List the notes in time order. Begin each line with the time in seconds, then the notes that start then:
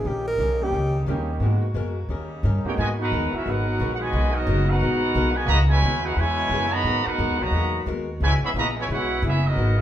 0.05 A#1 C#3 D#3 G3 A#3 C#4 D#4 G4
0.27 A#4
0.38 B1 D#3 A#3 C#4 G4
0.62 G3 A#3 C#4 D#4 G4
0.72 C#2 D#3 A#3 C#4 G4
1.06 D#2 D#3 G3 A#3 C#4 D#4 G4
1.40 G#2 B2 G#3 A#3 B3 D#4 F#4 A#4
1.74 F#2 G#3 B3 F#4 A#4
2.09 D#2 C#3 D#3 G3 C#4 D#4 G4 A#4
2.43 G2 D#3 C#4 G4 A#4
2.64 G#3 A#3 B3 C#4 D#4 F#4 G4 A#4 C#5 G5, muted upright bass stroke
2.77 G#2 B2 D#3 F#3 G#3 B3 F#4 A#4 B4 D#5 G#5
2.98 B3 D#4 F#4 A#4 B4 F#5
3.12 D#2 G#3 B3 F#4 A#4
3.32 C#4 E4 F#4 A#4 E5, muted upright bass stroke
3.44 G#1 G#3 B3 D#4 F#4
3.48 D#4 F#4 A#4 B4 F#5
3.80 A#1 G#3 B3 F#4 A#4
3.94 F#5
3.98 B2 D#3 G#3 F#4 B4 D#5 G#5
4.13 B1 G#3 B3 F#4 A#4
4.32 F#3 B3 D#4 F#4 A#4 D#5
4.47 F#1 G#3 B3 F#4 A#4
4.65 B3 D#4 F#4
4.69 D#4 A#4 B4 F#5
4.81 A#1 G#3 B3 F#4 A#4
5.15 B1 G#3 B3 F#4 A#4
5.34 B2 D#3 G#3 F#4 B4 D#5 G#5
5.46 C#2 C#3 A#3 E4 F#4 B4 D#5 A#5
5.50 B3 E4 G#4
5.67 B2 E3 G#3 E4 B4 C#5 G#5
5.82 D#2 C#3 B3 E4 G#4
6.03 D#4 F#4 G#4 B4 F#5
6.15 E2 B2 C#3 E3 G#3 B3 E4 B4 C#5 G#5
6.19 E4 G#4
6.49 F#2 C#3 B3 E4 G#4
6.69 D#3 F#3 B3 F#4 D#5 B5
6.73 A#5
6.84 G#2 D#3 F#3 G#3 B3 F#4 A#4
7.03 B3 D#4 F#4 B4 F#5, muted upright bass stroke
7.07 A#4
7.19 F#2 G#3 B3 F#4 A#4
7.30 D#2
7.39 B1 A#2 D#3 F#3 F#4 B4 D#5 A#5
7.51 E2 G#3 B3 F#4
7.56 A#4
7.86 D#2 G#3 B3 F#4 A#4
8.20 C#2 B2 C#3 E3 G#3 B3 E4 G#4 B4 C#5 G#5
8.41 E3 G#3 B3 G#4 C#5 E5 B5, muted upright bass stroke
8.54 A#1 C#3 A#3 B3 E4 G#4
8.58 F#4 B4 D#5 A#5
8.77 B2 E3 G#3 E4 B4 G#5
8.81 C#5
8.89 B1 C#3 G#3 B3 E4 F#4 G#4 B4 C#5 F#5
9.22 F#1 C#3 G#3 B3 C#4 E4 G#4
9.26 B4 E5
9.46 F#3 B3 D#4 F#4 A#4 D#5
9.56 G#1 B2 G#3 B3 F#4 A#4